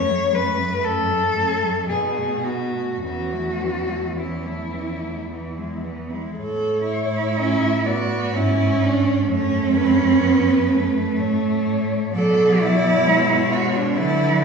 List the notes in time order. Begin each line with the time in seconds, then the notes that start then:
Already playing: F#2 A3 C#4 C#5
0.09 F#3 A3
0.33 A3 C#4 B4
0.58 F#3 A3
0.82 A3 C#4 A4
1.09 F#3 A3
1.33 A3 C#4
1.59 F#3 A3
1.86 B2 B3 D#4 G#4
2.16 A3 F#4
2.44 B3 D#4 F#4
2.73 A3 F#4
3.03 E2 E3 C#4 F#4
3.32 A3 E4
3.59 E3 C#4
3.88 A3 E4
4.17 E3 C#4 E4
4.45 A3 E4
4.72 E3 C#4
5.01 A3 E4
5.28 E3 B3
5.58 G#3 E4
5.83 E3 B3
6.09 G#3 E4
6.36 A2 A4
6.40 C#5
6.84 E4
7.37 C#4 E5
7.86 B3 F#4 D5
8.32 G#2 C#4 E4 C#5
8.82 D4
9.27 F#2 A3 C#5
9.31 C#4
9.75 B4
10.24 B3
10.71 A3
11.18 A2 C#5
12.14 B2 F#3 A4 D5
12.60 E4
13.05 G#3 C#5
13.52 F#4
13.76 D4
13.96 D3 F#3 E4 B4